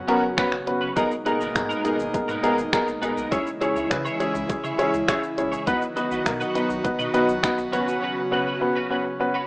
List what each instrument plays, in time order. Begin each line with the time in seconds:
Already playing: analog synth pad C#3 F#3 B3 F#4
0.08 grand piano B3 C#4 F#4 A#4, clean electric guitar C#4 F#4 B4, closed hi-hat
0.22 analog synth bass F#1, muted clean electric guitar stroke
0.37 grand piano B3 C#4 F#4 B4, clean electric guitar C#4 F#4 B4, finger snap, kick, closed hi-hat
0.52 analog synth bass G#1, finger snap, muted clean electric guitar stroke
0.66 analog synth bass E1, grand piano B3 C#4 F#4 B4, muted clean electric guitar stroke, closed hi-hat
0.81 analog synth bass F#1, clean electric guitar C#4 F#4 B4
0.96 analog synth bass G#1, analog synth pad B2 G#3 A#3 D#4, clean electric guitar B3 D#4 A#4, grand piano B3 D#4 G#4 A#4, kick, closed hi-hat, shaker
1.11 shaker
1.25 clean electric guitar B3 D#4 A#4, grand piano B3 D#4 G#4 A#4, closed hi-hat, shaker
1.40 analog synth bass G#1, clean electric guitar B3 D#4 A#4, shaker
1.55 analog synth bass G#2, grand piano B3 D#4 G#4 A#4, finger snap, muted clean electric guitar stroke, kick, closed hi-hat, shaker
1.69 clean electric guitar B3 D#4 A#4, shaker
1.84 clean electric guitar B3 D#4 A#4, grand piano B3 D#4 G#4 A#4, closed hi-hat, shaker
1.99 analog synth bass G#1, muted clean electric guitar stroke, shaker
2.13 analog synth bass G#2, grand piano B3 D#4 G#4 A#4, muted clean electric guitar stroke, kick, closed hi-hat, shaker
2.28 analog synth bass G#2, clean electric guitar B3 D#4 A#4, shaker
2.43 clean electric guitar B3 D#4 A#4, grand piano B3 D#4 G#4 A#4, closed hi-hat, shaker
2.58 analog synth bass G#1, muted clean electric guitar stroke, shaker
2.72 grand piano B3 D#4 G#4 A#4, finger snap, muted clean electric guitar stroke, kick, closed hi-hat, shaker
2.87 analog synth bass A#1, muted clean electric guitar stroke, shaker
3.02 analog synth bass A#1, clean electric guitar B3 D#4 A#4, grand piano B3 D#4 G#4 A#4, closed hi-hat, shaker
3.16 analog synth bass B1, clean electric guitar B3 D#4 A#4, shaker
3.31 analog synth bass C#2, analog synth pad C#3 E3 G#3 E4, grand piano C#4 E4 G#4 C#5, clean electric guitar E4 G#4 C#5, kick, closed hi-hat, shaker
3.47 shaker
3.61 grand piano C#4 E4 G#4 C#5, clean electric guitar E4 G#4 C#5, closed hi-hat, shaker
3.75 analog synth bass C#2, clean electric guitar E4 G#4 C#5, shaker
3.90 analog synth bass C#3, grand piano C#4 E4 G#4 B4, finger snap, muted clean electric guitar stroke, kick, closed hi-hat, shaker
4.05 clean electric guitar E4 G#4 C#5, shaker
4.19 grand piano C#4 E4 G#4 C#5, clean electric guitar E4 G#4 C#5, closed hi-hat, shaker
4.34 analog synth bass C#2, muted clean electric guitar stroke, shaker
4.49 analog synth bass C#3, grand piano C#4 E4 G#4 C#5, muted clean electric guitar stroke, kick, closed hi-hat, shaker
4.64 analog synth bass C#3, clean electric guitar E4 G#4 C#5, shaker
4.78 grand piano C#4 E4 G#4 C#5, clean electric guitar E4 G#4 C#5, closed hi-hat, shaker
4.93 analog synth bass C#2, muted clean electric guitar stroke, shaker
5.08 grand piano C#4 E4 G#4 C#5, clean electric guitar E4 G#4 C#5, finger snap, kick, closed hi-hat, shaker
5.22 muted clean electric guitar stroke, shaker
5.37 analog synth bass A#1, grand piano C#4 E4 G#4 C#5, muted clean electric guitar stroke, closed hi-hat, shaker
5.52 clean electric guitar E4 G#4 C#5, shaker
5.66 analog synth bass B1, analog synth pad D#3 F#3 B3 F#4, grand piano B3 D#4 F#4 B4, clean electric guitar D#4 F#4 B4, kick, closed hi-hat, shaker
5.82 shaker
5.96 grand piano B3 D#4 F#4 B4, clean electric guitar D#4 F#4 B4, closed hi-hat, shaker
6.11 analog synth bass B1, clean electric guitar D#4 F#4 B4, shaker
6.25 analog synth bass B2, grand piano B3 D#4 F#4 A#4, finger snap, muted clean electric guitar stroke, kick, closed hi-hat, shaker
6.40 clean electric guitar D#4 F#4 B4, shaker
6.55 grand piano B3 D#4 F#4 B4, clean electric guitar D#4 F#4 B4, closed hi-hat, shaker
6.70 analog synth bass B1, muted clean electric guitar stroke, shaker
6.84 analog synth bass B2, grand piano B3 D#4 F#4 B4, muted clean electric guitar stroke, kick, closed hi-hat, shaker
6.99 analog synth bass B2, clean electric guitar D#4 F#4 B4, shaker
7.13 grand piano B3 D#4 F#4 B4, clean electric guitar D#4 F#4 B4, closed hi-hat, shaker
7.28 analog synth bass B1, muted clean electric guitar stroke, shaker
7.43 grand piano B3 D#4 F#4 B4, finger snap, muted clean electric guitar stroke, kick, closed hi-hat, shaker
7.58 analog synth bass B1, muted clean electric guitar stroke, shaker
7.72 analog synth bass F#1, analog synth pad C#3, grand piano B3 C#4 F#4 B4, clean electric guitar C#4 F#4 B4, closed hi-hat, shaker
7.87 analog synth bass E1, clean electric guitar C#4 F#4 B4, shaker
8.02 clean electric guitar C#4 F#4 B4
8.31 grand piano B3 C#4 F#4 B4, clean electric guitar C#4 F#4 B4
8.46 clean electric guitar C#4 F#4 B4
8.61 grand piano B3 C#4 F#4 B4, muted clean electric guitar stroke
8.75 clean electric guitar C#4 F#4 B4
8.90 grand piano B3 C#4 F#4 B4, clean electric guitar C#4 F#4 B4
9.05 muted clean electric guitar stroke
9.20 grand piano B3 C#4 F#4 B4, muted clean electric guitar stroke
9.34 clean electric guitar C#4 F#4 B4